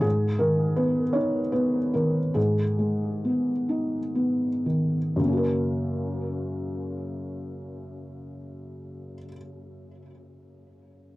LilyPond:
<<
  \new Staff \with { instrumentName = "Felt piano" } { \time 6/8 \key fis \major \tempo 4. = 41 gis'8 ais'8 b'8 cis''8 b'8 ais'8 | gis'2~ gis'8 r8 | <fis, cis ais cis' fis' ais'>2.~ | <fis, cis ais cis' fis' ais'>2. | }
  \new Staff \with { instrumentName = "Felt piano" } { \time 6/8 \key fis \major gis,8 dis8 b8 dis'8 b8 dis8 | gis,8 gis8 b8 dis'8 b8 dis8 | r2. | r2. | }
>>